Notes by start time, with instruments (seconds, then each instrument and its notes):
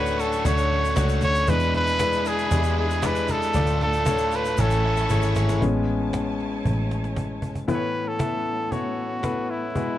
Already playing: picked electric bass D2, grand piano A2 A3 D4 F#4 C#5, overdriven electric guitar D3 A3 C#4 F#4, string section D4 A4 F#5 C#6, trumpet B4
0.06 shaker
0.18 overdriven electric guitar A3 C#4 F#4, trumpet A4, shaker
0.32 shaker
0.44 picked electric bass D2, overdriven electric guitar D3 A3 C#4 F#4, grand piano A3 D4 F#4 C#5, trumpet C#5, cajon bass, shaker
0.58 shaker
0.70 overdriven electric guitar A3 C#4 F#4
0.85 shaker
0.96 picked electric bass C#2, overdriven electric guitar D3 A3 C#4 F#4, grand piano A3 D4 F#4 C#5, cajon bass, cajon slap, shaker
1.09 shaker
1.21 picked electric bass D2, overdriven electric guitar A3 C#4 F#4, trumpet C#5, cajon bass, shaker
1.35 shaker
1.47 overdriven electric guitar E2 B2 E3 G#3 D4 E4, picked electric bass E2, grand piano B2 G#3 D4 E4 B4, string section G#4 E5 B5, trumpet B4, cajon bass, shaker
1.59 shaker
1.74 overdriven electric guitar E3 G#3 D4 E4, trumpet B4, cajon bass, cajon slap
1.87 shaker
1.99 overdriven electric guitar E3 G#3 D4 E4, grand piano G#3 D4 E4 B4, cajon bass, cajon slap, shaker
2.12 shaker
2.25 overdriven electric guitar E3 G#3 D4 E4, trumpet G#4, cajon slap, shaker
2.38 shaker
2.51 overdriven electric guitar E2 B2 E3 G#3 D4 E4, picked electric bass E2, grand piano G#3 D4 E4 G4, cajon bass, shaker
2.58 grand piano G#4
2.63 shaker
2.77 overdriven electric guitar E3 G#3 D4 E4, trumpet G#4
2.90 shaker
3.02 overdriven electric guitar E3 G#3 D4 E4, grand piano G#3 D4 E4 D5, trumpet B4, cajon bass, cajon slap, shaker
3.15 shaker
3.28 overdriven electric guitar E3 G#3 D4 E4, trumpet A4, cajon bass, shaker
3.42 shaker
3.54 picked electric bass D2, grand piano A2 A3 D4 F4 D5, overdriven electric guitar D3 A3 D4 F4, string section A3 D4 F5 A5, cajon bass, shaker
3.67 shaker
3.81 overdriven electric guitar A3 D4 F4, trumpet A4, cajon bass, cajon slap
3.93 shaker
4.06 overdriven electric guitar D3 A3 D4 F4, grand piano A3 D4 F4 C#5, cajon bass, cajon slap, shaker
4.18 shaker
4.32 overdriven electric guitar A3 D4 F4, cajon slap, shaker
4.36 trumpet B4
4.45 shaker
4.57 picked electric bass A1, overdriven electric guitar A2 E3 G#3 C#4 E4, grand piano A2 E3 A3 E4 C#5 G#5, trumpet A4, string section E5 G#5 C#6, cajon bass, cajon slap, shaker
4.70 cajon slap, shaker
4.84 overdriven electric guitar G#3 C#4 E4, cajon slap
4.97 cajon slap, shaker
5.09 picked electric bass G#1, overdriven electric guitar E3 G#3 C#4 E4, grand piano A3 E4 G#4 C#5, cajon bass, cajon slap, shaker
5.22 shaker
5.35 picked electric bass G#1, overdriven electric guitar G#3 C#4 E4, cajon slap, shaker
5.49 cajon slap, shaker
5.62 picked electric bass A1, grand piano G#3 B3 C#4, string section E4 C#5 G#5 A5, cajon bass
5.89 cajon slap
6.13 cajon bass, cajon slap
6.39 cajon slap
6.65 picked electric bass A1, cajon bass, cajon slap
6.91 cajon slap
7.04 cajon slap
7.16 cajon bass, cajon slap
7.42 cajon bass
7.55 cajon bass
7.68 grand piano A2 E3 B3 E4 A4 B4, string section A3 B3 C#4, trumpet B4, cajon bass
7.75 grand piano C#5
7.95 cajon slap
8.08 trumpet A4
8.19 grand piano B3 E4 A4 E5, cajon bass, cajon slap
8.45 cajon slap
8.71 grand piano B3 E4 A4 C#5, trumpet F#4, cajon bass
8.98 cajon slap
9.23 grand piano B3 E4 A4 B4, cajon bass, cajon slap
9.50 trumpet E4, cajon slap
9.75 grand piano B2 G#3 E4 F#4 B4, string section E3 F#4 G#4, cajon bass